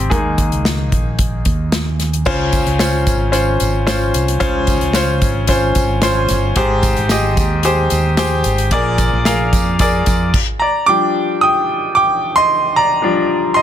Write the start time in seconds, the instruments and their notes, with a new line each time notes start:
Already playing: grand piano C3 A#3 C4 G4 G#4
0.10 fretless electric bass D#2, grand piano D#3 G#3 A#3 D#4 G#4, kick, closed hi-hat
0.38 kick, closed hi-hat
0.52 fretless electric bass C#2, closed hi-hat
0.65 snare, closed hi-hat
0.92 fretless electric bass A#1, kick, closed hi-hat
1.19 kick, closed hi-hat
1.45 fretless electric bass D#2, kick, closed hi-hat
1.72 snare, closed hi-hat
2.00 snare, closed hi-hat
2.13 closed hi-hat
2.25 grand piano C#3 C#4 F4 C5, kick, crash, tambourine
2.52 kick, closed hi-hat, tambourine
2.66 fretless electric bass C#2, closed hi-hat
2.79 grand piano C#4 F4 C5, snare, closed hi-hat, tambourine
3.07 fretless electric bass G#1, kick, closed hi-hat, tambourine
3.32 grand piano C#4 F4 C5, closed hi-hat, tambourine
3.60 fretless electric bass G#1, closed hi-hat, tambourine
3.87 grand piano C#4 F4 C5, snare, closed hi-hat, tambourine
4.14 fretless electric bass C2, closed hi-hat, tambourine
4.28 closed hi-hat
4.40 grand piano C#3 C#4 F4 C5, kick, closed hi-hat
4.67 kick, closed hi-hat, tambourine
4.81 fretless electric bass C#2, closed hi-hat
4.93 grand piano C#4 F4 C5, snare, closed hi-hat, tambourine
5.22 fretless electric bass G#1, kick, closed hi-hat, tambourine
5.47 grand piano C#4 F4 C5, kick, closed hi-hat, tambourine
5.75 fretless electric bass G#1, kick, closed hi-hat, tambourine
6.02 grand piano C#4 F4 C5 C6, snare, closed hi-hat, tambourine
6.16 grand piano G#5
6.28 fretless electric bass G1, snare, closed hi-hat, tambourine
6.56 grand piano G#2 G4 G#4 C5, kick, closed hi-hat
6.83 kick, closed hi-hat, tambourine
6.97 fretless electric bass G#1, closed hi-hat
7.09 grand piano G4 G#4 D#5, snare, closed hi-hat, tambourine
7.37 fretless electric bass D#2, kick, closed hi-hat, tambourine
7.63 grand piano G4 G#4 C5, closed hi-hat, tambourine
7.90 fretless electric bass D#2, closed hi-hat, tambourine
8.17 grand piano G4 G#4 C5, snare, closed hi-hat, tambourine
8.44 fretless electric bass G#1, closed hi-hat, tambourine
8.58 closed hi-hat
8.71 fretless electric bass A#1, grand piano A#2 G#4 A#4 D5, kick, closed hi-hat, tambourine
8.98 kick, closed hi-hat, tambourine
9.13 fretless electric bass A#1
9.25 grand piano G#4 A#4 F5, snare, closed hi-hat, tambourine
9.53 fretless electric bass F2, kick, closed hi-hat, tambourine
9.79 grand piano G#4 A#4 D5, kick, closed hi-hat, tambourine
10.06 fretless electric bass F2, kick, closed hi-hat, tambourine
10.34 kick, crash
10.59 grand piano D5 A#5
10.86 grand piano F3 G3 D4 G5 D6
11.41 grand piano G5 D#6
11.95 grand piano G5 D6
12.36 grand piano D#5 C6
12.76 grand piano D5 A#5
13.02 grand piano F3 G3 D4
13.54 grand piano D#5 C6